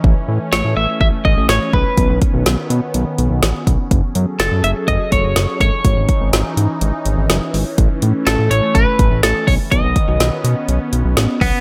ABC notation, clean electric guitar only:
X:1
M:4/4
L:1/8
Q:1/4=124
K:Bmix
V:1 name="Clean electric guitar"
z2 c e e d c B- | B z6 z | z2 A e d c2 c- | c2 z6 |
z2 A c B2 A c | d6- d B, |]